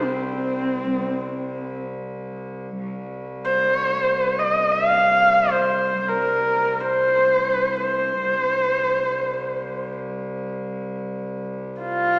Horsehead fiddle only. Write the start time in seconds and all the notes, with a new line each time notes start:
0.03 C4
3.45 C5
4.38 D#5
4.72 F5
5.52 C5
6.09 A#4
6.81 C5
7.82 C5
11.81 F4